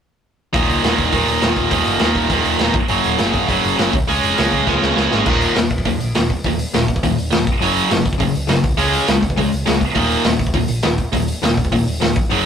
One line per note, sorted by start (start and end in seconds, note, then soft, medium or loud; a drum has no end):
0.53 0.64 D#1 medium
0.53 0.83 D#2 medium
0.53 0.82 A#2 medium
0.53 0.82 D#3 loud
0.53 kick loud
0.53 open hi-hat medium
0.68 0.78 C#2 medium
0.68 open hi-hat soft
0.83 0.93 D#1 medium
0.83 1.13 D#2 medium
0.83 1.13 A#2 medium
0.83 1.13 D#3 medium
0.83 snare loud
0.83 open hi-hat medium
0.98 1.08 D#1 medium
0.98 kick medium
0.98 open hi-hat soft
1.12 1.23 D#1 medium
1.12 1.42 D#2 medium
1.12 1.41 A#2 medium
1.12 1.40 D#3 medium
1.12 kick medium
1.12 open hi-hat medium
1.27 1.37 D#1 medium
1.27 open hi-hat soft
1.42 1.52 D#1 medium
1.42 1.71 D#2 medium
1.42 1.71 A#2 medium
1.42 1.71 D#3 medium
1.42 snare loud
1.42 open hi-hat medium
1.56 1.66 D#1 medium
1.56 kick medium
1.56 open hi-hat soft
1.71 1.81 D#1 medium
1.71 2.02 D#2 medium
1.71 2.02 A#2 medium
1.71 2.00 D#3 loud
1.71 kick medium
1.71 open hi-hat medium
1.85 1.96 F#1 medium
1.85 open hi-hat soft
1.99 2.11 D#2 medium
1.99 2.31 D#2 medium
1.99 2.31 A#2 medium
1.99 2.32 D#3 medium
1.99 snare loud
1.99 open hi-hat medium
2.15 2.25 D#1 medium
2.15 kick medium
2.15 open hi-hat soft
2.30 2.40 D#2 medium
2.30 2.59 D#2 medium
2.30 2.59 A#2 medium
2.30 2.58 D#3 medium
2.30 kick medium
2.30 open hi-hat medium
2.45 2.54 D#2 medium
2.45 open hi-hat soft
2.59 2.69 D#1 medium
2.59 2.74 D#2 medium
2.59 2.74 A#2 medium
2.59 2.74 D#3 loud
2.59 snare loud
2.59 open hi-hat medium
2.74 2.83 F#1 medium
2.74 kick loud
2.74 open hi-hat soft
2.88 2.99 F#1 medium
2.88 3.18 F#2 medium
2.88 3.17 C#3 loud
2.88 3.17 F#3 loud
2.88 open hi-hat medium
3.04 3.14 D#1 medium
3.04 open hi-hat soft
3.18 3.29 F#1 medium
3.18 3.46 F#2 medium
3.18 3.47 C#3 medium
3.18 3.48 F#3 medium
3.18 snare loud
3.18 open hi-hat medium
3.34 3.44 F#1 medium
3.34 kick medium
3.34 open hi-hat medium
3.47 3.58 F#1 medium
3.47 3.76 F#2 medium
3.47 3.76 C#3 medium
3.47 3.75 F#3 medium
3.47 kick medium
3.47 open hi-hat medium
3.64 3.73 F#1 medium
3.64 open hi-hat medium
3.76 3.89 F#1 medium
3.76 3.92 F#2 medium
3.76 3.92 C#3 medium
3.76 3.91 F#3 medium
3.76 snare loud
3.76 open hi-hat medium
3.93 4.03 C#2 medium
3.93 kick loud
3.93 open hi-hat medium
4.08 4.17 C#2 medium
4.08 4.37 C#3 medium
4.08 4.36 G#3 loud
4.08 4.35 C#4 loud
4.08 open hi-hat medium
4.23 4.33 F1 medium
4.23 open hi-hat soft
4.36 4.48 C#2 medium
4.36 4.65 C#3 medium
4.36 4.66 G#3 medium
4.36 4.66 C#4 medium
4.36 snare loud
4.36 open hi-hat medium
4.52 4.61 C#2 medium
4.52 kick medium
4.52 open hi-hat soft
4.67 4.76 C#2 medium
4.67 4.95 C#3 medium
4.67 4.95 G#3 medium
4.67 4.94 C#4 medium
4.67 kick medium
4.67 snare medium
4.82 4.91 C#2 medium
4.82 snare medium
4.95 5.06 C#2 medium
4.95 5.25 C#3 medium
4.95 5.25 G#3 medium
4.95 5.24 C#4 medium
4.95 snare medium
5.11 5.21 G#1 medium
5.11 snare medium
5.26 5.45 D#1 medium
5.26 5.54 D#2 medium
5.26 5.55 A#2 loud
5.26 5.55 D#3 medium
5.26 kick loud
5.26 crash loud
5.41 open hi-hat medium
5.56 5.66 D#1 medium
5.56 5.69 D#2 medium
5.56 5.69 A#2 medium
5.56 snare loud
5.56 open hi-hat medium
5.70 5.80 D#1 medium
5.70 kick medium
5.70 open hi-hat medium
5.78 kick medium
5.85 5.95 D#1 medium
5.85 5.98 D#2 medium
5.85 5.99 A#2 medium
5.85 kick medium
5.85 open hi-hat medium
6.00 6.11 A#1 medium
6.00 open hi-hat medium
6.15 6.35 D#1 medium
6.15 6.28 D#2 medium
6.15 6.28 A#2 medium
6.15 snare loud
6.15 open hi-hat medium
6.30 kick medium
6.30 open hi-hat medium
6.44 6.63 D#1 medium
6.44 6.58 D#2 medium
6.44 6.57 A#2 medium
6.44 kick medium
6.44 open hi-hat medium
6.59 open hi-hat medium
6.74 6.84 D#1 medium
6.74 6.87 D#2 medium
6.74 6.87 A#2 medium
6.74 snare loud
6.74 open hi-hat medium
6.88 6.98 D#1 medium
6.88 kick medium
6.88 open hi-hat medium
6.96 kick medium
7.03 7.13 D#1 medium
7.03 7.16 D#2 medium
7.03 7.16 A#2 medium
7.03 kick loud
7.03 open hi-hat medium
7.18 7.29 D#1 medium
7.18 open hi-hat soft
7.32 7.43 D#1 medium
7.32 7.45 D#2 medium
7.32 7.46 A#2 medium
7.32 snare loud
7.32 open hi-hat medium
7.47 7.56 F#1 medium
7.47 kick medium
7.47 open hi-hat soft
7.61 7.81 F#1 medium
7.61 7.88 F#2 medium
7.61 7.88 C#3 medium
7.61 7.90 F#3 loud
7.61 open hi-hat medium
7.76 open hi-hat soft
7.89 8.00 F#1 medium
7.89 8.03 F#2 medium
7.89 8.03 C#3 medium
7.89 snare loud
7.89 open hi-hat medium
8.06 8.15 F#1 medium
8.06 kick medium
8.06 open hi-hat medium
8.13 kick medium
8.18 8.30 F#1 medium
8.18 8.33 F#2 medium
8.18 8.32 C#3 medium
8.18 kick medium
8.18 open hi-hat medium
8.35 8.45 C#2 medium
8.35 open hi-hat medium
8.47 8.59 F#1 medium
8.47 8.62 F#2 medium
8.47 8.62 C#3 medium
8.47 snare loud
8.47 open hi-hat medium
8.64 8.74 C#2 medium
8.64 kick medium
8.64 open hi-hat medium
8.77 8.97 C#2 medium
8.77 9.06 C#3 medium
8.77 9.07 G#3 medium
8.77 9.07 C#4 loud
8.77 open hi-hat medium
8.93 open hi-hat medium
9.07 9.18 C#2 medium
9.07 9.21 C#3 medium
9.07 9.21 G#3 medium
9.07 snare loud
9.07 open hi-hat medium
9.23 9.32 C#2 medium
9.23 kick medium
9.23 open hi-hat medium
9.30 kick medium
9.37 9.47 C#2 medium
9.37 9.50 C#3 medium
9.37 9.51 G#3 medium
9.37 kick medium
9.37 open hi-hat medium
9.53 9.62 C#2 medium
9.53 open hi-hat soft
9.66 9.86 C#2 medium
9.66 9.80 C#3 medium
9.66 9.80 G#3 medium
9.66 snare loud
9.66 open hi-hat medium
9.81 kick medium
9.81 open hi-hat medium
9.95 10.15 D#1 medium
9.95 10.23 D#2 medium
9.95 10.24 A#2 medium
9.95 10.25 D#3 medium
9.95 kick medium
9.95 open hi-hat medium
10.10 open hi-hat medium
10.24 10.35 D#1 medium
10.24 10.38 D#2 medium
10.24 10.39 A#2 medium
10.24 snare loud
10.24 open hi-hat medium
10.39 10.50 D#1 medium
10.39 kick medium
10.39 open hi-hat medium
10.47 kick medium
10.54 10.64 D#1 medium
10.54 10.68 D#2 medium
10.54 10.68 A#2 medium
10.54 kick medium
10.54 open hi-hat medium
10.68 10.79 A#1 medium
10.68 open hi-hat medium
10.83 11.04 D#1 medium
10.83 10.97 D#2 medium
10.83 10.97 A#2 medium
10.83 snare loud
10.83 open hi-hat medium
10.98 kick medium
10.98 open hi-hat medium
11.13 11.32 D#1 medium
11.13 11.27 D#2 medium
11.13 11.27 A#2 medium
11.13 kick loud
11.13 open hi-hat medium
11.28 open hi-hat medium
11.42 11.52 D#1 medium
11.42 11.56 D#2 medium
11.42 11.57 A#2 medium
11.42 snare loud
11.42 open hi-hat medium
11.57 11.67 D#1 medium
11.57 kick medium
11.57 open hi-hat medium
11.65 kick medium
11.72 11.82 D#1 medium
11.72 11.86 D#2 medium
11.72 11.86 A#2 medium
11.72 kick loud
11.72 open hi-hat medium
11.88 11.97 D#1 medium
11.88 open hi-hat medium
12.00 12.16 D#1 medium
12.00 12.15 D#2 medium
12.00 12.15 A#2 medium
12.00 snare loud
12.00 open hi-hat medium
12.16 12.26 F#1 medium
12.16 kick loud
12.16 open hi-hat medium
12.30 12.46 F#1 medium
12.30 12.46 F#2 medium
12.30 12.46 C#3 medium
12.30 12.46 F#3 medium
12.30 open hi-hat medium